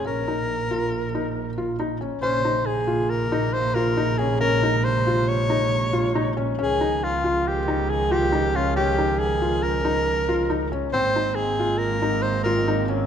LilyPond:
<<
  \new Staff \with { instrumentName = "Soprano saxophone" } { \time 5/4 \key bes \dorian \tempo 4 = 138 bes'1 r4 | c''4 aes'4 bes'4 c''8 bes'4 aes'8 | bes'4 c''4 des''2~ des''8 r8 | aes'4 f'4 g'4 aes'8 g'4 f'8 |
g'4 aes'4 bes'2~ bes'8 r8 | c''4 aes'4 bes'4 c''8 bes'4 r8 | }
  \new Staff \with { instrumentName = "Felt piano" } { \time 5/4 \key bes \dorian des'8 ees'4 f'4 ees'4 f'8 ees'8 des'8 | des'8 ees'4 f'4 ees'4 f'8 ees'8 des'8 | des'8 ees'4 f'4 ees'4 f'8 ees'8 des'8 | des'8 ees'4 f'4 ees'4 f'8 ees'8 des'8 |
des'8 ees'4 f'4 ees'4 f'8 ees'8 des'8 | c'8 ees'4 f'4 ees'4 f'8 ees'8 des'8 | }
  \new Staff \with { instrumentName = "Woodwind section" } { \clef bass \time 5/4 \key bes \dorian << { r1 r4 | <c des>1~ <c des>4~ | <c des>1~ <c des>4 | <ees des'>1~ <ees des'>4~ |
<ees des'>1~ <ees des'>4 | <aes c'>1~ <aes c'>4 | } \\ { r1 r4 | bes1~ bes4 | aes1~ aes4 | f1~ f4~ |
f1~ f4 | bes1~ bes4 | } >> }
  \new Staff \with { instrumentName = "Double bass" } { \clef bass \time 5/4 \key bes \dorian bes,,1~ bes,,4 | bes,,1~ bes,,4~ | bes,,1~ bes,,4 | des,1~ des,4~ |
des,1~ des,4 | aes,,1~ aes,,4 | }
>>